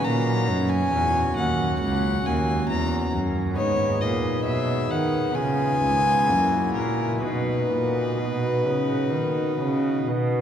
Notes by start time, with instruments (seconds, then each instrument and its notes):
0.00 pipe organ A#2 C#4 F#4, cello A#2, violin A#5
0.48 pipe organ F#2, cello F#2
0.69 violin G#5
0.92 cello E2, pipe organ E2
1.36 pipe organ D#2, cello D#2, violin F#5
1.80 pipe organ C#2, cello C#2, violin F#5
2.25 cello D#2, pipe organ D#2, violin G#5
2.69 pipe organ E2, cello E2, violin A#5
3.14 cello F#2, pipe organ F#2
3.53 pipe organ B3 D#4 G#4, violin C#5
3.57 pipe organ G#2, cello G#2
4.01 pipe organ A#2, cello A#2, violin D#5
4.45 pipe organ B2, cello B2, violin E5
4.90 cello D#3, pipe organ D#3, violin F#5
5.32 pipe organ B3 F4 G#4, violin G#5
5.37 pipe organ C#3, cello C#3
5.83 pipe organ C#2, cello C#2
6.25 pipe organ A#3 E4 F#4
6.30 pipe organ F#2, cello F#2
6.75 cello A#2, pipe organ A#2, violin A#4
7.19 cello B2, pipe organ B3 D#4 F#4
7.23 pipe organ B2, violin B4
7.71 cello A#2, pipe organ A#2
8.18 cello B2, pipe organ B2
8.65 cello C#3, pipe organ C#3
9.12 cello D#3, pipe organ D#3
9.59 cello C#3, pipe organ C#3
10.07 cello B2, pipe organ B2